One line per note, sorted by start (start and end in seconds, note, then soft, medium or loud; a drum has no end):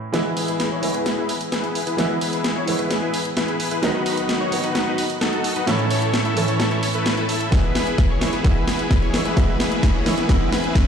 0.00 0.10 A2 medium
0.00 0.11 E3 medium
0.00 0.11 A3 medium
0.00 0.11 C#4 medium
0.00 0.12 E4 medium
0.12 0.80 E3 medium
0.12 0.80 G#3 medium
0.12 0.80 B3 medium
0.12 0.34 E4 medium
0.12 0.81 E4 loud
0.12 0.34 G#4 medium
0.12 0.34 B4 medium
0.12 snare soft
0.12 closed hi-hat medium
0.37 0.69 E4 medium
0.37 0.69 G#4 medium
0.37 0.69 B4 medium
0.37 open hi-hat loud
0.48 closed hi-hat medium
0.60 snare soft
0.60 closed hi-hat medium
0.71 0.92 E4 medium
0.71 0.92 G#4 medium
0.71 0.92 C#5 loud
0.82 1.95 E3 medium
0.82 1.95 G#3 medium
0.82 1.96 B3 medium
0.82 1.96 E4 medium
0.82 open hi-hat loud
0.94 1.15 E4 medium
0.94 1.15 G#4 medium
0.94 1.15 B4 loud
0.94 closed hi-hat soft
1.06 snare soft
1.06 closed hi-hat medium
1.18 1.34 E4 medium
1.18 1.34 G#4 medium
1.18 1.34 B4 loud
1.29 open hi-hat loud
1.41 closed hi-hat soft
1.52 1.84 E4 medium
1.52 1.84 G#4 medium
1.52 1.84 B4 medium
1.52 snare soft
1.52 closed hi-hat medium
1.64 closed hi-hat soft
1.75 open hi-hat loud
1.87 1.95 E4 medium
1.87 1.95 G#4 medium
1.87 1.95 B4 medium
1.87 closed hi-hat soft
1.97 2.64 E3 medium
1.97 2.65 G#3 medium
1.97 2.65 B3 medium
1.97 2.19 E4 medium
1.97 2.65 E4 loud
1.97 2.19 G#4 medium
1.97 2.19 B4 medium
1.97 snare soft
1.97 closed hi-hat medium
2.21 2.53 E4 medium
2.21 2.53 G#4 medium
2.21 2.53 B4 medium
2.21 open hi-hat loud
2.33 closed hi-hat medium
2.44 snare medium
2.44 closed hi-hat medium
2.56 2.76 E4 medium
2.56 2.76 G#4 medium
2.56 2.76 C#5 loud
2.66 3.79 E3 medium
2.66 3.80 G#3 medium
2.66 3.80 B3 medium
2.66 3.81 E4 medium
2.66 open hi-hat loud
2.79 2.99 E4 medium
2.79 2.99 G#4 medium
2.79 2.99 B4 loud
2.79 closed hi-hat soft
2.91 snare medium
2.91 closed hi-hat medium
3.02 3.18 E4 medium
3.02 3.18 G#4 medium
3.02 3.18 B4 loud
3.14 open hi-hat loud
3.25 closed hi-hat soft
3.37 3.69 E4 medium
3.37 3.69 G#4 medium
3.37 3.69 B4 medium
3.37 snare medium
3.37 closed hi-hat medium
3.48 closed hi-hat soft
3.60 open hi-hat loud
3.71 3.80 E4 medium
3.71 3.80 G#4 medium
3.71 3.80 B4 loud
3.71 closed hi-hat soft
3.82 4.49 D#3 loud
3.82 4.49 F#3 medium
3.82 4.50 B3 medium
3.82 4.03 D#4 medium
3.82 4.50 D#4 loud
3.82 4.03 F#4 medium
3.82 4.03 B4 medium
3.82 snare medium
3.82 closed hi-hat medium
4.06 4.38 D#4 medium
4.06 4.38 F#4 medium
4.06 4.38 B4 medium
4.06 open hi-hat loud
4.17 closed hi-hat medium
4.29 snare medium
4.29 closed hi-hat medium
4.41 4.61 D#4 medium
4.41 4.61 F#4 medium
4.41 4.61 C#5 loud
4.51 5.64 D#3 medium
4.51 5.65 F#3 medium
4.51 5.65 B3 medium
4.51 5.65 D#4 medium
4.51 open hi-hat loud
4.64 4.84 D#4 medium
4.64 4.84 F#4 medium
4.64 4.84 B4 loud
4.64 closed hi-hat soft
4.75 snare medium
4.75 closed hi-hat medium
4.87 5.03 D#4 medium
4.87 5.03 F#4 medium
4.87 5.03 B4 loud
4.98 open hi-hat loud
5.10 closed hi-hat soft
5.21 5.53 D#4 medium
5.21 5.53 F#4 medium
5.21 5.53 A4 medium
5.21 snare medium
5.21 closed hi-hat medium
5.33 closed hi-hat soft
5.44 open hi-hat loud
5.56 5.65 D#4 medium
5.56 5.65 F#4 medium
5.56 5.65 B4 loud
5.56 closed hi-hat soft
5.66 6.33 A2 medium
5.66 6.34 E3 medium
5.66 6.34 A3 medium
5.66 6.34 C#4 medium
5.66 5.88 E4 medium
5.66 6.35 E4 loud
5.66 5.88 A4 medium
5.66 5.88 C#5 medium
5.66 snare medium
5.66 closed hi-hat medium
5.79 closed hi-hat soft
5.90 6.22 E4 medium
5.90 6.22 A4 medium
5.90 6.22 C#5 medium
5.90 open hi-hat loud
6.02 closed hi-hat soft
6.14 snare medium
6.14 closed hi-hat medium
6.25 6.46 E4 medium
6.25 6.46 A4 medium
6.25 6.46 E5 loud
6.25 closed hi-hat soft
6.35 7.49 A2 medium
6.35 7.49 E3 medium
6.35 7.49 A3 medium
6.35 7.50 C#4 medium
6.35 7.50 E4 medium
6.35 open hi-hat loud
6.48 6.69 E4 medium
6.48 6.69 A4 medium
6.48 6.69 C#5 loud
6.48 closed hi-hat soft
6.60 snare medium
6.60 closed hi-hat medium
6.71 6.87 E4 medium
6.71 6.87 A4 medium
6.71 6.87 C#5 loud
6.71 closed hi-hat soft
6.83 open hi-hat loud
6.94 7.15 E4 medium
6.94 7.15 A4 medium
6.94 7.15 B4 loud
6.94 closed hi-hat soft
7.06 snare medium
7.06 closed hi-hat medium
7.17 7.26 E4 loud
7.17 7.26 A4 medium
7.17 7.26 B4 loud
7.17 closed hi-hat soft
7.29 7.49 E4 medium
7.29 7.49 A4 medium
7.29 7.49 E5 medium
7.29 open hi-hat loud
7.41 closed hi-hat soft
7.51 8.18 E3 medium
7.51 8.18 G#3 medium
7.51 8.19 B3 medium
7.51 7.72 E4 medium
7.51 8.19 E4 medium
7.51 7.72 B4 medium
7.51 kick loud
7.51 snare medium
7.51 closed hi-hat medium
7.51 riser medium
7.75 8.07 E4 medium
7.75 8.07 G#4 medium
7.75 8.07 B4 medium
7.75 snare medium
7.75 open hi-hat loud
7.87 closed hi-hat soft
7.98 kick loud
7.98 snare medium
7.98 closed hi-hat medium
8.10 8.30 E4 medium
8.10 8.30 G#4 medium
8.10 8.30 C#5 medium
8.20 8.42 E3 medium
8.20 8.42 G#3 medium
8.20 8.43 B3 medium
8.20 8.43 E4 medium
8.20 snare medium
8.20 open hi-hat loud
8.33 8.43 E4 medium
8.33 8.43 G#4 medium
8.33 8.43 B4 medium
8.33 closed hi-hat soft
8.43 9.10 E3 medium
8.43 9.11 G#3 medium
8.43 9.11 B3 medium
8.43 8.65 E4 medium
8.43 9.11 E4 medium
8.43 8.65 G#4 medium
8.43 8.65 B4 medium
8.43 kick loud
8.43 snare medium
8.43 closed hi-hat medium
8.67 8.99 E4 medium
8.67 8.99 G#4 medium
8.67 8.99 B4 medium
8.67 snare medium
8.67 open hi-hat loud
8.79 closed hi-hat soft
8.91 kick loud
8.91 snare medium
8.91 closed hi-hat medium
9.02 9.22 E4 medium
9.02 9.22 G#4 medium
9.02 9.22 C#5 medium
9.02 closed hi-hat soft
9.12 9.34 E3 medium
9.12 9.35 G#3 medium
9.12 9.35 B3 medium
9.12 9.36 E4 medium
9.12 snare medium
9.12 open hi-hat loud
9.25 9.35 E4 medium
9.25 9.35 G#4 medium
9.25 9.35 B4 medium
9.25 closed hi-hat soft
9.35 10.03 E3 medium
9.35 10.03 G#3 medium
9.35 10.03 B3 medium
9.35 10.04 E4 loud
9.35 kick loud
9.35 snare medium
9.35 closed hi-hat medium
9.60 9.92 E4 medium
9.60 9.92 G#4 medium
9.60 9.92 B4 medium
9.60 snare medium
9.60 open hi-hat loud
9.72 closed hi-hat medium
9.83 kick loud
9.83 snare medium
9.83 closed hi-hat medium
9.94 10.15 E4 medium
9.94 10.15 G#4 medium
9.94 10.15 C#5 loud
10.05 10.26 E3 medium
10.05 10.27 G#3 medium
10.05 10.27 B3 medium
10.05 10.28 E4 medium
10.05 snare medium
10.05 open hi-hat loud
10.18 10.27 E4 medium
10.18 10.27 G#4 medium
10.18 10.27 B4 loud
10.18 closed hi-hat soft
10.28 10.87 E3 medium
10.28 10.87 G#3 medium
10.28 10.87 B3 medium
10.28 10.49 E4 medium
10.28 10.87 E4 loud
10.28 10.49 G#4 medium
10.28 10.49 B4 medium
10.28 kick loud
10.28 snare medium
10.28 closed hi-hat medium
10.52 10.84 E4 medium
10.52 10.84 G#4 medium
10.52 10.84 B4 loud
10.52 snare medium
10.52 open hi-hat loud
10.64 closed hi-hat soft
10.75 kick loud
10.75 snare medium
10.75 closed hi-hat medium